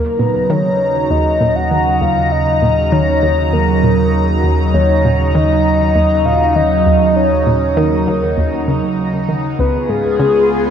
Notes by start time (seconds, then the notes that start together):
Already playing: D#2 C#3 F#3 D#4 A#4 A#5
0.19 A#2 B4
0.50 D#3 C#5
1.10 D#2 D#5
1.41 A#2
1.56 F#5
1.71 D#3
2.01 D#2 F5
2.32 D#5
2.62 A#2
2.92 D#3 C#5
3.22 D#2
3.53 D#2 A#4
3.83 A#2
4.44 D#2
4.74 D#2 C#5
5.05 A#2
5.35 D#3 D#5
5.95 D#2 D#5
6.25 A#2 F5
6.56 D#3 D#5
6.86 D#2
7.16 C#5
7.47 A#2
7.77 D#3 A#4
8.07 D#2
8.38 D#2
8.68 C#3
9.29 D#3
9.59 C#2 C#3 B3 F4 G#4 B4
9.89 G#2 G#4
10.19 C#3